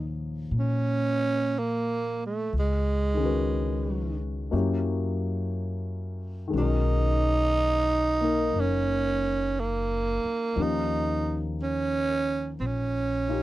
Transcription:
Already playing: D#2 A#2 F3 D#4 G#4 C#5
0.51 A#2
0.59 C#4
1.59 A#3
2.26 A3
2.53 C#2
2.59 G#3
3.14 D#3 G#3
3.19 C#4 F#4
3.25 B4
4.51 F#2 F#3 A#3 C#4 E4 G4
6.48 D#3 G#3
6.53 B1 C#4 F#4
6.58 D#4 A#4
8.21 A#3 D#4 A#4
8.53 F#1
8.60 C#4
9.60 A#3
10.24 muted upright bass stroke
10.56 D#2 F3 A#3 C#4 D#4 G4
10.62 D#4
11.63 C#4
12.60 A#1 C4
12.66 C#4
13.28 C#4 D#4 F4 G4

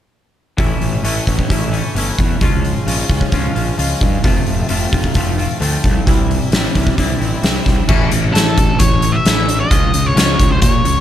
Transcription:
0.57 A1 A2 E3 A3 C#4 E4, kick, open hi-hat
0.81 A1, open hi-hat
1.03 A1 A2 E3 A3 C#4 E4, open hi-hat
1.26 A1 A3 C#4 E4, kick, open hi-hat
1.39 kick
1.49 A1 E3 A3 C#4 E4, kick, open hi-hat
1.72 A3 C#4 E4, open hi-hat
1.95 G1 E3 A3 C#4 E4, open hi-hat
2.18 E2, kick, open hi-hat
2.41 C#2 C#3 F3 G#3 C#4 F4, kick, open hi-hat
2.65 open hi-hat
2.86 A#1 C#3 F3 G#3 C#4 F4, open hi-hat
3.08 C#2 G#3 C#4 F4, kick, open hi-hat
3.21 kick
3.31 C#2 F3 G#3 C#4 F4, kick, open hi-hat
3.55 A#1 G#3 C#4 F4, open hi-hat
3.77 C#2 F3 G#3 C#4 F4, open hi-hat
4.01 G2, kick, open hi-hat
4.23 F1 F2 C3 F3 A3 C4 F4, kick, open hi-hat
4.46 F1, open hi-hat
4.68 F1 F2 C3 F3 A3 C4 F4, open hi-hat
4.92 F1 F3 A3 C4 F4, kick, open hi-hat
5.04 kick
5.14 F1 F3 A3 C4 F4, kick, open hi-hat
5.37 F3 A3 C4 F4, open hi-hat
5.60 D2 F3 A3 C4 F4, open hi-hat
5.84 C2, kick, open hi-hat
6.06 C2 C3 E3 G3 C4 E4, kick, open hi-hat
6.31 open hi-hat
6.52 A1 C3 E3 G3 C4 E4, snare, open hi-hat
6.75 C2 G3 C4 E4, kick, open hi-hat
6.87 kick
6.97 C2 E3 G3 C4 E4, kick, open hi-hat
7.19 A1 G3 C4 E4, open hi-hat
7.41 C2 E3 G3 C4 E4, snare, open hi-hat
7.66 C2, kick, snare, open hi-hat
7.88 A1 E3 A3 C#4 E4, kick, crash
8.11 A1, closed hi-hat
8.34 A1 E3 A3 C#4 E4 A4, snare, closed hi-hat
8.58 A1, muted clean electric guitar stroke, kick, closed hi-hat
8.79 A1 C#5, muted clean electric guitar stroke, kick, closed hi-hat
9.02 muted clean electric guitar stroke, closed hi-hat
9.12 E5
9.25 A1 E3 A3 C#4 E4, snare, closed hi-hat
9.48 muted clean electric guitar stroke, closed hi-hat
9.60 D#5
9.71 C#2 F3 G#3 C#4 F4, kick, closed hi-hat
9.94 C#2, closed hi-hat
10.06 C#5
10.16 C#2 F3 G#3 C#4 F4 C#5, snare, closed hi-hat
10.38 C#2, muted clean electric guitar stroke, kick, closed hi-hat
10.52 C5
10.62 A#2 C#5, muted clean electric guitar stroke, kick, closed hi-hat
10.84 C#2, muted clean electric guitar stroke, closed hi-hat

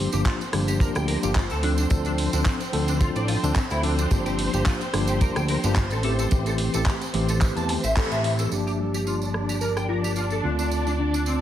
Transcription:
Already playing: C4 C5
0.12 G1 F3 A#3 D4 G4, closed hi-hat, tambourine
0.25 F4, kick, clap, closed hi-hat, tambourine
0.41 closed hi-hat, tambourine
0.52 G1 F3 A#3 D4 G4, cross-stick, open hi-hat
0.68 G4, closed hi-hat, tambourine
0.79 F3 A#3 D4 G4 A#4, kick, closed hi-hat, tambourine
0.95 D2 G5, cross-stick, closed hi-hat, tambourine
1.08 A#4, open hi-hat
1.23 G1 F3 A#3 D4 G4, closed hi-hat, tambourine
1.35 F4, kick, clap, closed hi-hat, tambourine
1.50 D2 A4, closed hi-hat, tambourine
1.63 F3 C4 D4 A4, open hi-hat
1.78 D4, closed hi-hat, tambourine
1.90 D2 F3 C4 D4 A4, kick, closed hi-hat, tambourine
2.05 D4, closed hi-hat, tambourine
2.18 open hi-hat
2.33 D2 F3 C4 D4 A4, closed hi-hat, tambourine
2.45 C4, kick, clap, closed hi-hat, tambourine
2.60 closed hi-hat, tambourine
2.72 D2 F3 C4 D4 A4, open hi-hat
2.88 D4, closed hi-hat, tambourine
3.00 F3 C4 D4 F4 A4, kick, closed hi-hat, tambourine
3.16 A1 D5, closed hi-hat, tambourine
3.28 F4, open hi-hat
3.43 D2 F3 C4 D4 A4, closed hi-hat, tambourine
3.55 C4, kick, clap, closed hi-hat, tambourine
3.70 D2 E4, closed hi-hat, tambourine
3.83 F3 C4 D4 A4, open hi-hat
3.99 D4, closed hi-hat, tambourine
4.10 G1 F3 A#3 D4 G4, kick, closed hi-hat, tambourine
4.26 G4, closed hi-hat, tambourine
4.39 open hi-hat
4.53 G1 F3 A#3 D4 G4, closed hi-hat, tambourine
4.66 F4, kick, clap, closed hi-hat, tambourine
4.81 closed hi-hat, tambourine
4.93 G1 F3 A#3 D4 G4, cross-stick, open hi-hat
5.08 G4, closed hi-hat, tambourine
5.21 F3 A#3 D4 G4 A#4, kick, closed hi-hat, tambourine
5.36 D2 G5, cross-stick, closed hi-hat, tambourine
5.48 A#4, open hi-hat
5.64 G1 F3 A#3 D4 G4, closed hi-hat, tambourine
5.75 F4, kick, clap, closed hi-hat, tambourine
5.90 A1 A4, closed hi-hat, tambourine
6.03 E3 A3 C4 G4 A4, open hi-hat
6.19 A4, closed hi-hat, tambourine
6.31 A1 E3 A3 C4 G4, kick, closed hi-hat, tambourine
6.46 A4, closed hi-hat, tambourine
6.58 open hi-hat
6.74 A1 E3 A3 C4 G4 A4, closed hi-hat, tambourine
6.86 G4, kick, clap, closed hi-hat, tambourine
7.01 closed hi-hat, tambourine
7.14 A1 E3 A3 C4 G4, open hi-hat
7.29 A4, closed hi-hat, tambourine
7.41 E3 A3 C4 G4 C5, kick, clap, closed hi-hat, tambourine
7.56 E2 A5, closed hi-hat, tambourine
7.69 A5, open hi-hat
7.84 A1 E5, closed hi-hat, tambourine
7.96 E3 A3 C4 G4 A4, kick, clap, closed hi-hat, tambourine
8.11 A1 E5, closed hi-hat, tambourine
8.24 E5, open hi-hat
8.39 A4, closed hi-hat, tambourine
8.50 G1 F3 A#3 D4 G4 D5, tambourine
8.67 G4, tambourine
8.79 G4
8.94 G4, tambourine
9.07 F4, tambourine
9.22 tambourine
9.34 cross-stick
9.49 G4, tambourine
9.61 A#4, tambourine
9.77 G5, cross-stick, tambourine
9.89 F4 A#4
10.04 G4, tambourine
10.16 F4, tambourine
10.30 A4, tambourine
10.43 D2 D3 A3 C4 D4 F4
10.59 D4, tambourine
10.71 tambourine
10.87 D4, tambourine
10.99 D4
11.14 D4, tambourine
11.26 C4, tambourine

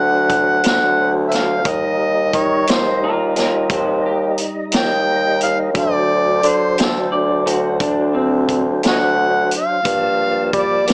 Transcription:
Already playing: D2 F#3 D4 C5 F#5
0.30 kick, closed hi-hat
0.63 D2 F#5, snare, closed hi-hat
1.28 E5, closed hi-hat
1.34 F5, snare
1.64 D#2 G3 D#4 D#5, kick, closed hi-hat
1.69 D#5
2.33 D#3 C#5, kick, closed hi-hat
2.67 D#2 C5, snare, closed hi-hat
3.03 F4 A#4
3.36 D#2 F4 A#4, snare, closed hi-hat
3.70 D#2 G4 C5, kick, closed hi-hat
4.06 G4
4.38 closed hi-hat
4.72 D#2, snare, closed hi-hat
4.76 G5
5.41 F5, closed hi-hat
5.73 D2 F#3 D4 C5, kick, closed hi-hat
5.79 D5
6.43 D3, closed hi-hat
6.48 C5
6.78 D2, snare, closed hi-hat
6.84 A4
7.12 D5
7.46 D2 F#4, closed hi-hat
7.80 D2 D4, kick, closed hi-hat
8.14 C4
8.49 kick, closed hi-hat
8.83 D2, snare, closed hi-hat
8.88 C#5 D#5 F#5
9.51 closed hi-hat
9.58 F5
9.82 G2 F3 A#3 A5, kick, closed hi-hat
10.53 G3, kick, closed hi-hat
10.58 D5
10.87 G2, snare, closed hi-hat

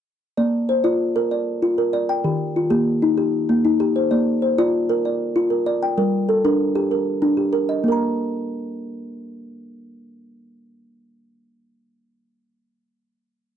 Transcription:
0.37 A#3 D5
0.69 C5
0.84 F4 D5
1.16 A#4
1.31 D5
1.62 F4
1.78 A#4
1.93 D5
2.09 G5
2.24 D#3 G4
2.56 F4
2.70 A#3 G4
3.02 D#4
3.18 G4
3.49 A#3
3.65 D#4
3.80 G4
3.96 C5
4.11 A#3 D5
4.42 C5
4.58 F4 D5
4.89 A#4
5.05 D5
5.36 F4
5.50 A#4
5.66 D5
5.83 G5
5.98 G3 A#4
6.29 A4
6.45 D4 A#4
6.76 G4
6.91 A#4
7.22 D4
7.37 G4
7.53 A#4
7.69 D#5
7.84 A#3
7.88 A#4 A#5

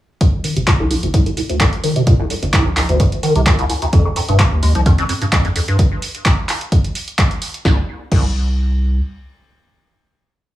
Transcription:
0.21 C2, kick, closed hi-hat
0.44 D#3, open hi-hat
0.56 G1 C3, closed hi-hat
0.67 A#2, kick, clap, closed hi-hat
0.80 A#1 C2
0.91 A#1 C2, open hi-hat
1.03 G1 D2, closed hi-hat
1.14 C2, kick, closed hi-hat
1.26 C2, closed hi-hat
1.37 C2, open hi-hat
1.49 D2, closed hi-hat
1.60 C2, kick, clap, closed hi-hat
1.73 closed hi-hat
1.84 D#3, open hi-hat
1.96 C3, closed hi-hat
2.07 A#2, kick, closed hi-hat
2.19 C2
2.30 C2, open hi-hat
2.43 G1 D2, closed hi-hat
2.53 C2, kick, clap, closed hi-hat
2.66 A#1 C2
2.77 A#1 C2, clap, open hi-hat
2.89 G1 D2, closed hi-hat
3.00 C2, kick, closed hi-hat
3.12 closed hi-hat
3.23 D#3, open hi-hat
3.35 C2 C3, closed hi-hat
3.46 A#2, kick, clap, closed hi-hat
3.59 C2, closed hi-hat
3.70 C2, open hi-hat
3.82 D2, closed hi-hat
3.93 F2, kick, closed hi-hat
4.05 F2
4.16 F2, open hi-hat
4.29 F1 G2, closed hi-hat
4.39 F2, kick, clap, closed hi-hat
4.52 D#2
4.63 D#2 G#3, open hi-hat
4.75 C2 F3, closed hi-hat
4.86 F2 D#3, kick, closed hi-hat
4.98 F2, closed hi-hat
5.09 F2, open hi-hat
5.22 G2, closed hi-hat
5.32 F2, kick, clap, closed hi-hat
5.45 F2, closed hi-hat
5.56 F2, open hi-hat
5.68 G2, closed hi-hat
5.79 kick, closed hi-hat
6.02 open hi-hat
6.15 closed hi-hat
6.25 kick, clap, closed hi-hat
6.49 clap, open hi-hat
6.61 closed hi-hat
6.72 kick, closed hi-hat
6.84 closed hi-hat
6.95 open hi-hat
7.08 closed hi-hat
7.19 kick, clap, closed hi-hat
7.31 closed hi-hat
7.42 open hi-hat
7.54 closed hi-hat
7.65 C2, kick, snare
8.12 C2, kick, crash

